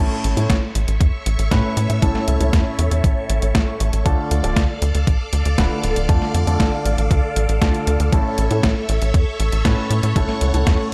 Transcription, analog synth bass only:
0.24 A1
0.37 A2
0.50 A1
0.75 A1
0.88 A1
1.01 E2
1.26 A1
1.39 A1
1.51 A2
1.77 A2
1.90 A2
2.02 C#2
2.28 C#2
2.40 C#2
2.53 E2
2.79 E2
2.91 E2
3.04 A1
3.29 A1
3.42 A1
3.55 A1
3.80 A1
3.93 A1
4.06 D2
4.31 D2
4.44 D1
4.56 D2
4.82 D2
4.95 D2
5.07 A1
5.33 D2
5.45 D2
5.58 D1
5.84 D1
5.96 D1
6.09 F2
6.34 F2
6.47 F2
6.60 A1
6.85 A1
6.98 A1
7.11 D2
7.36 A1
7.49 A1
7.62 D2
7.87 D2
8.00 D2
8.12 A1
8.38 A1
8.51 A2
8.63 A1
8.89 A1
9.02 A1
9.14 E2
9.40 A1
9.52 A1
9.65 A2
9.90 A2
10.03 A2
10.16 C#2
10.41 C#2
10.54 C#2
10.67 E2

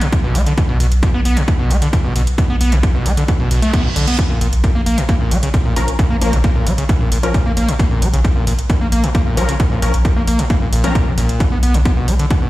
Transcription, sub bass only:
0.24 B1
0.35 B1
0.69 B1
0.80 B1
0.92 B1
1.14 B1
1.25 B1
1.59 B1
1.70 B1
2.04 B1
2.16 B1
2.50 B1
2.61 B1
2.72 B1
2.95 B1
3.06 B1
3.40 B1
3.51 B1
3.85 B1
3.96 B1
4.30 A#1
4.41 A#1
4.53 A#1
4.75 A#1
4.86 A#1
5.20 A#1
5.31 A#1
5.65 A#1
5.76 A#1
6.10 A#1
6.22 A#1
6.33 A#1
6.56 A#1
6.67 A#1
7.01 A#1
7.12 A#1
7.46 A#1
7.57 A#1
7.91 A#1
8.02 A#1
8.13 A#1
8.36 A#1
8.47 A#1
8.81 A#1
8.92 A#1
9.26 A#1
9.37 A#1
9.71 A#1
9.82 A#1
9.94 A#1
10.16 A#1
10.27 A#1
10.61 A#1
10.72 A#1
11.07 A#1
11.18 A#1
11.52 B1
11.63 B1
11.74 B1
11.97 B1
12.08 B1
12.42 B1

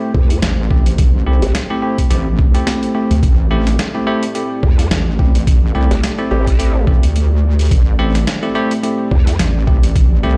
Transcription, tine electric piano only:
Already playing: A3 C4 E4 G4
0.71 A3 C4 E4 G4
1.26 A3 C4 E4 G4
1.70 A3 C4 E4 G4
1.82 A3 C4 E4 G4
2.10 A3 C4 E4 G4
2.54 A3 C4 E4 G4
2.95 A3 C4 E4 G4
3.51 A3 C4 E4 G4
3.94 A3 C4 E4 G4
4.07 A3 C4 E4 G4
4.35 A3 C4 E4 G4
5.19 A3 C4 E4 G4
5.75 A3 C4 E4 G4
6.18 A3 C4 E4 G4
6.31 A3 C4 E4 G4
6.59 A3 C4 E4 G4
6.87 A3 C4 E4 G4
7.99 A3 C4 E4 G4
8.43 A3 C4 E4 G4
8.55 A3 C4 E4 G4
8.83 A3 C4 E4 G4
9.67 A3 C4 E4 G4
10.23 A3 C4 E4 G4

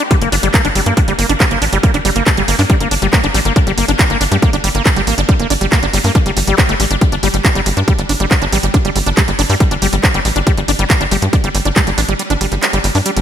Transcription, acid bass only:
0.11 G3
0.22 A#3
0.32 D4
0.43 G3
0.54 A#3
0.65 D4
0.75 G3
0.86 A#3
0.97 D4
1.08 G3
1.19 A#3
1.29 D4
1.40 G3
1.51 A#3
1.62 D4
1.73 G3
1.83 A#3
1.94 D4
2.05 G3
2.16 A#3
2.27 D4
2.37 G3
2.48 A#3
2.59 D4
2.70 G3
2.81 A#3
2.91 D4
3.02 G3
3.13 A#3
3.24 D4
3.35 G3
3.45 A#3
3.56 D4
3.67 G3
3.78 A#3
3.88 D4
3.99 G3
4.10 A#3
4.21 D4
4.32 G3
4.42 A#3
4.53 D4
4.64 G3
4.75 A#3
4.86 D4
4.96 G3
5.07 A#3
5.18 D4
5.29 G3
5.39 A#3
5.50 D4
5.61 G3
5.72 A#3
5.83 D4
5.93 G3
6.04 A#3
6.15 D4
6.26 G3
6.37 G3
6.47 G3
6.58 G3
6.69 A3
6.80 G3
6.91 D4
7.01 G3
7.12 D4
7.23 G3
7.34 G3
7.45 D4
7.55 G3
7.66 G3
7.77 D4
7.88 G3
7.99 G3
8.09 D4
8.20 G3
8.31 G3
8.42 D4
8.53 G3
8.63 G3
8.74 D4
8.85 G3
8.96 G3
9.06 D4
9.17 G3
9.28 G3
9.39 D4
9.50 G3
9.60 G3
9.71 D4
9.82 G3
9.93 G3
10.04 D4
10.14 G3
10.25 G3
10.36 D4
10.47 G3
10.58 G3
10.68 D4
10.79 G3
10.90 G3
11.01 D4
11.12 G3
11.22 G3
11.33 D4
11.44 G3
11.55 G3
11.65 D4
11.76 G3
11.87 G3
11.98 D4
12.09 G3
12.19 G3
12.30 D4
12.41 G3
12.52 G3
12.63 D4
12.73 G3
12.84 G3
12.95 D4
13.06 G3
13.17 G3

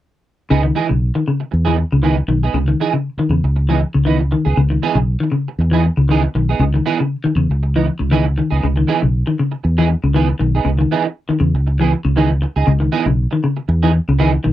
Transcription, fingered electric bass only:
0.51 C#2
0.91 B1
1.53 E2
1.92 C#2
2.28 B1
2.54 C#2
3.18 muted fingered electric bass stroke
3.30 E2
3.44 C#2
3.95 C#2
4.46 C#2
4.57 C#2
4.95 B1
5.59 E2
5.97 C#2
6.35 B1
6.59 C#2
7.25 muted fingered electric bass stroke
7.36 E2
7.49 C#2
8.00 C#2
8.52 C#2
8.64 C#2
9.03 B1
9.65 E2
10.03 C#2
10.40 B1
10.65 C#2
11.29 muted fingered electric bass stroke
11.40 E2
11.54 C#2
12.05 C#2
12.56 C#2
12.68 C#2
13.06 B1
13.69 E2
14.08 C#2
14.46 B1

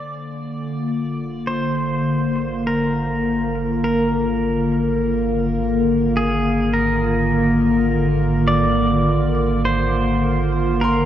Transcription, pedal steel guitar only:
Already playing: D5
1.47 C5
2.67 A#4
3.84 A#4
6.17 G#4
6.74 A#4
8.48 D5
9.65 C5
10.81 A#4

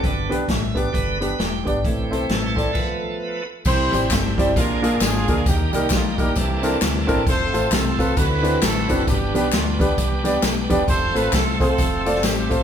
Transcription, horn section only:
3.67 E4 G4 C5
4.12 C4 E4 A4
4.56 D4 F4 A#4
5.01 D4 F4 G#4
5.47 A#3 D#4 G4
5.74 G4
5.93 F4
6.18 A#3 E4 G4
7.28 F4 A4 C5
7.72 C4 F4 A4
8.17 E4 F#4 B4
8.62 C4 F#4 A4
9.08 B3 D4 G4
9.36 G4
9.53 F4
9.80 B3 D4 G4
10.88 F4 A4 C5
11.16 B4
11.33 A4
11.60 C4 F4 A4
12.24 C4 G4

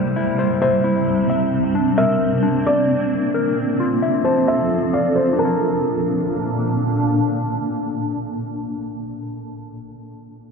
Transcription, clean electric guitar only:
Already playing: E4 C5
0.16 E4
0.39 C5
0.62 E5
0.84 E4
1.30 E5
1.75 D4
1.98 A#4
2.43 D4
3.34 A#4
3.80 F4
4.02 E5
4.25 A5
4.48 F4
4.94 F5
5.33 D4
5.39 A5
5.45 A#4

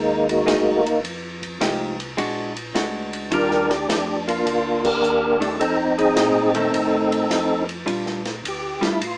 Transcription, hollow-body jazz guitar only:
0.46 F#3 A#3 D#4 G#4
1.61 F3 G#3 D#4 G4
2.17 G#3 D4 F#4
2.75 G#3 D4 F#4
3.31 D#3 G3 D4 F4
5.40 D#3 A3 D4
6.54 D#3 A3
7.86 G3 D4 F4
8.81 G3 D4 F4

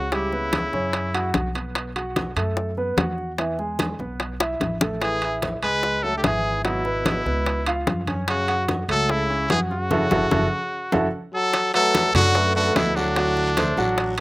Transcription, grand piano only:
0.12 G3 G4
0.32 B3 B4
0.73 C#4 C#5
1.14 F#4 F#5
1.55 B3 B4
1.96 F#4 F#5
2.36 A3 A4
2.78 B3 B4
2.97 F#4 F#5
3.39 E3 E4
3.59 G#3 G#4
4.00 B3 B4
4.40 E4 E5
4.81 A3 A4
5.22 E4 E5
5.63 G#3 G#4
6.04 A3 A4
6.24 E4 E5
6.65 F#3 F#4
6.85 B3 B4
7.26 B3 B4
7.67 F4 F5
8.08 C#4 C#5
8.48 F#4 F#5
8.89 A3 A4
9.30 C#4 C#5
9.50 F#4 F#5
9.91 E4 F#4 A4
10.11 E4 F#4 A4
10.32 E4 F#4 A4
10.93 E4 F#4 A4
11.74 A3 A4 B4
12.15 F#3 F#4 F#5
12.35 A3 A4 B4
12.56 A3 A4 B4
12.96 F#3 F#4 F#5
13.17 F#3 F#4 F#5
13.57 A3 A4 C5
13.78 F#3 F#4 F#5

